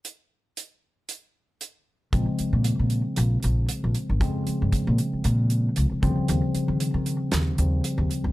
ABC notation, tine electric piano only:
X:1
M:4/4
L:1/8
Q:1/4=116
K:Bbdor
V:1 name="Tine electric piano" clef=bass
z8 | [D,F,A,C]8 | [D,F,A,C]6- [D,F,A,C] [D,F,G,C]- | [D,F,G,C]4- [D,F,G,C] [D,F,G,C]3 |]